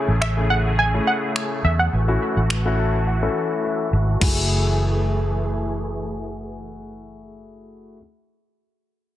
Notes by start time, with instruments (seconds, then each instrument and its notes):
Already playing: supersaw synth C#3 A3 G#4, grand piano A3 C#4 E4 G#4, synth pluck C#5
0.08 fingered electric bass A1
0.21 synth pluck E5, finger snap
0.37 grand piano A3 C#4 E4 G#4
0.50 synth pluck F#5
0.79 synth pluck G#5
0.94 grand piano A3 C#4 E4 G#4
1.07 synth pluck F#5
1.36 finger snap
1.64 fingered electric bass E2, synth pluck E5
1.79 synth pluck F#5
1.93 fingered electric bass A1, supersaw synth E3 F#4
2.08 grand piano A3 C#4 E4 F#4
2.37 fingered electric bass A1
2.50 finger snap
2.65 grand piano A3 C#4 E4 F#4
2.79 grand piano A5
3.07 grand piano F#5
3.22 grand piano A3 C#4 E4 A4
3.64 grand piano E5
3.93 fingered electric bass G#1
4.20 fingered electric bass F#1, supersaw synth E3 A3, grand piano A3 E4 F#4 G#4, kick, crash